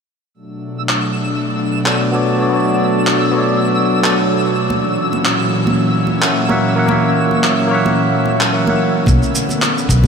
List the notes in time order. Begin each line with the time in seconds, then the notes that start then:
0.34 B2 F#3 A3 D4 E6
0.89 clap
1.84 B3 F#4 A4 C#5 D5, clap
2.12 B3 F#4 A4 C#5 D5
2.38 B3 F#4 A4 C#5 D5
2.49 B3 F#4 A4
2.54 C#5 D5
3.07 clap
3.31 B3 F#4 A4
3.37 C#5 D5
4.02 B3 F#4 A4 C#5 D5, clap
4.70 A#2 E3 C#4, high conga
5.13 high conga
5.25 clap
5.67 high conga
6.07 high conga
6.20 A#3 A#4 C#5 E5 F#5, clap
6.48 A#3 A#4 C#5 E5 F#5, high conga
6.75 A#3 A#4 C#5 E5 F#5
6.86 A#3 A#4 C#5, high conga
6.91 E5 F#5
7.31 high conga
7.44 clap
7.68 A#3 A#4 C#5
7.73 E5 F#5
7.86 high conga
8.26 high conga
8.41 clap
8.52 A#3 A#4 C#5 E5 F#5
8.66 A#3 A#4 C#5 E5 F#5, high conga
9.06 B1 D3 A3 B3, kick, high conga, shaker
9.23 shaker
9.35 shaker
9.49 high conga, shaker
9.62 clap, shaker
9.78 shaker
9.89 B1, kick, shaker
10.04 high conga